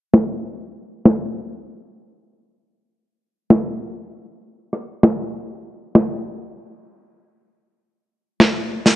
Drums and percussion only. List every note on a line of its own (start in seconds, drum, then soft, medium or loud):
0.14 snare loud
1.05 snare loud
3.50 snare loud
4.73 cross-stick medium
5.03 snare loud
5.95 snare loud
8.40 cross-stick medium
8.40 snare loud
8.86 snare medium